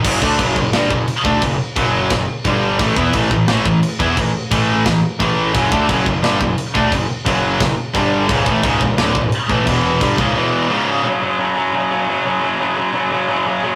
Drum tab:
CC |x-x-x-x-|x-x-x-x-|x-x-x-x-|x-x-x-x-|
SD |----o---|----o---|----o---|----o---|
BD |oooo-o-o|o-o-o-o-|oooo-o-o|o-o-o-o-|

CC |x-x-x-x-|x-x-x-x-|x-x-x-x-|x-x-----|
SD |----o---|----o---|----o---|--------|
BD |oooo-o-o|o-o-o-o-|oooo-o-o|o-oo----|

CC |--------|--------|
SD |--------|--------|
BD |--------|--------|